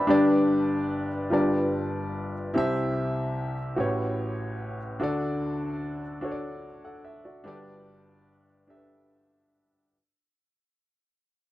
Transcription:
Already playing: D4 G4 B4 D5 E5 G5 A5 B5
0.07 G1 G2 D4 G4 B4 D5
1.30 G1 G2 F4 G4 A#4 D5
1.39 B4
2.54 C2 C3 E4 G4 C5 E5
3.76 A1 A2 F#4 G4 B4 C#5
5.00 D2 D3 D4 F#4 A4 D5
6.21 D4 F#4 A4 C#5
6.31 D5
6.85 A4 F#5
7.05 E5
7.25 F#4 D5
7.44 G1 G2 D4 G4 A4 D5
7.53 B4
8.67 D4 G4 A4 E5
8.76 B4

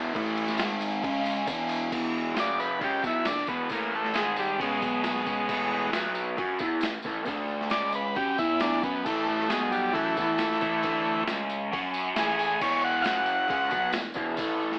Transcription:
Already playing: E2 B2 E3
0.03 tambourine
0.14 A2 E3 A3, kick, tambourine, crash
0.25 tambourine
0.38 crash
0.48 snare, tambourine
0.57 G#2 D#3 G#3, snare, tambourine, crash
0.81 tambourine, crash
0.92 tambourine
1.02 C#3 G#3 C#4, kick, tambourine, crash
1.14 tambourine
1.26 tambourine, crash
1.36 tambourine
1.46 E2 B2 E3, kick, tambourine, crash
1.59 tambourine
1.69 tambourine, crash
1.91 E2 B2 E3, kick, open hi-hat, crash, tambourine
2.16 tambourine
2.36 F#2 C#3 F#3, snare, open hi-hat, tambourine
2.40 D5
2.60 B4, tambourine
2.81 C#3 G#3 C#4 G4, kick, open hi-hat, tambourine
3.04 B2 F#3 B3 E4, kick, tambourine
3.25 E2 B2 D4, snare, open hi-hat, tambourine
3.37 snare
3.47 E2 B2 E3 B3, kick, tambourine
3.69 A2 E3 A3 A#3, kick, open hi-hat, tambourine
3.92 A3, tambourine
4.05 snare
4.14 G#2 D#3 G#3, snare, open hi-hat, tambourine
4.36 G3, tambourine
4.59 B2 C#3 G#3 C#4, kick, open hi-hat, tambourine
4.81 B2 F#3 B3, kick, tambourine
5.04 snare, open hi-hat, tambourine
5.16 snare
5.26 C#3 G#3 C#4, kick, tambourine
5.49 A2 E3 A3, kick, crash, tambourine
5.71 tambourine
5.93 B2 F#3 B3, snare, open hi-hat, tambourine
6.15 tambourine
6.37 F#3 C#4 F#4, kick, open hi-hat, tambourine
6.59 E3 B3 E4, kick, tambourine
6.81 A2 E3, snare, open hi-hat, tambourine
7.03 A2 E3 A3, kick, tambourine
7.25 D3 A3 D4, kick, open hi-hat, tambourine
7.48 tambourine
7.61 snare
7.70 C#3 G#3 C#4 D5, snare, open hi-hat, tambourine
7.92 B4, tambourine
8.15 F#3 C#4 F#4 G4, kick, open hi-hat, tambourine
8.38 E3 B3 E4, kick, tambourine
8.60 D4, snare, open hi-hat, tambourine
8.72 snare
8.82 F#3 B3 C#4 F#4, kick, tambourine
9.05 A2 E3 A3, kick, tambourine, crash
9.28 A3, tambourine
9.40 snare
9.49 B2 F#3 G#3 B3, snare, open hi-hat, tambourine
9.71 G3, tambourine
9.93 E3 F#3 A3 C#4 F#4, kick, open hi-hat, tambourine
10.16 E3 B3 E4, kick, tambourine
10.38 A2 E3, snare, open hi-hat, tambourine
10.51 snare
10.60 A2 E3 A3, kick, tambourine
10.83 D3 A3 D4, kick, open hi-hat, tambourine
11.05 tambourine
11.28 C#3 G#3 C#4, snare, open hi-hat, tambourine
11.49 tambourine
11.72 F#3 C#4 F#4, kick, open hi-hat, tambourine
11.94 tambourine
12.15 A2 E3 A3 G#4, snare, open hi-hat, tambourine
12.28 snare
12.39 tambourine
12.60 E2 B2 E3 C#5, kick, tambourine, crash
12.83 F#5, tambourine
13.02 F#2 C#3 F#3 F5 F#5, snare, open hi-hat, tambourine
13.26 tambourine
13.48 C#3 G#3 C#4, kick, open hi-hat, tambourine
13.70 B2 F#3 B3, kick, tambourine
13.92 E2 B2, snare, open hi-hat, tambourine
14.14 E2 B2 E3, kick, tambourine
14.37 A2 E3 A3, kick, open hi-hat, tambourine
14.60 tambourine
14.72 snare

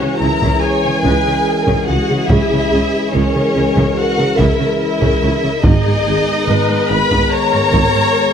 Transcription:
Already playing: E3 G#3 C#4 F#4 G#4 C#5
0.01 C#3
0.17 C#2 E4 A#4 A#5
0.22 C#3
0.42 C#3, taiko
0.61 G#4 C#5 G#5
0.85 C#3
1.04 C#2 C#3 B4, taiko
1.26 C#3
1.47 A#4
1.67 C#3, taiko
1.87 C#2 C#3 F#4 G#4 F#5
2.10 C#3
2.28 C#2 C#3 E3 G#3 C#4 E4 G#4 E5, taiko
2.52 C#3
2.71 C#2 C#3
3.12 C#2 C#3 C#4 A#4 C#5
3.35 C#3
3.55 C#2 C#3
3.76 C#3, taiko
3.95 F#4 F#5
4.18 C#3
4.38 C#2 C#3 E4 E5, taiko
4.60 C#3
4.80 E4 E5
5.01 C#3, taiko
5.23 C#2 C#3
5.43 C#3
5.63 G#1 G#2 D#3 G#3 B3 D#4 G#4 D#5, taiko
5.86 G#2
6.05 G#1 G#2
6.47 G#1 G#2 B4
6.69 G#2
6.89 G#1 G#2 B4 B5
7.11 G#2, taiko
7.30 A#4 C#5 A#5
7.53 G#2
7.73 G#1 G#2, taiko
7.95 G#2

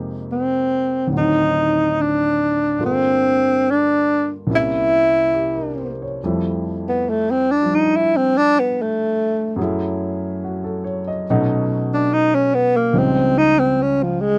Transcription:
Already playing: F2 C3 G#3 A#3 D#4 G4
0.32 C4
1.07 D2 A2
1.12 F#3 C4
1.17 D#3 D#4
2.01 D4
2.79 G2 D3 A3 A#3 F4
2.86 C4
3.71 D4
4.47 C2 C3 A#3 C#4
4.51 E4
5.34 G4
5.55 A#4
5.79 C5
6.02 C#5
6.24 F2 F3 G3 A3 E4
6.88 B3
7.10 A3
7.31 C4
7.51 D4
7.63 F3 G3 D4
7.75 D#4
7.96 E4
8.17 C4
8.37 D4
8.59 B3
8.82 A3
9.56 F#2 F#3 G#4
9.60 A3 E4
10.44 F#4
10.64 A4
10.84 C#5
11.08 D#5
11.30 B2 F#3 A3 C#4 D#4
11.94 D4
12.13 D#4
12.35 C#4
12.54 B3
12.76 A#3
12.93 C#2 C#3 F3 G3 D#4 C5
12.99 C4
13.38 D#4
13.59 C4
13.82 C#4
14.03 F3
14.20 G#3

